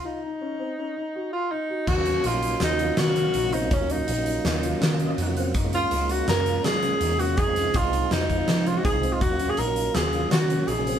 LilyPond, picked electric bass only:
\new Staff \with { instrumentName = "Picked electric bass" } { \clef bass \time 5/4 \key ees \dorian \tempo 4 = 164 r1 r4 | ees,4 bes,,4 ees,4 ees4 bes,,4 | ees,4 bes,,4 ees,4 ees4 f,4 | ges,4 des,4 ges,4 ges4 fes,4 |
f,4 c,4 f,4 f4 c,4 | ees,4 bes,,4 ees,4 ees4 bes,,4 | }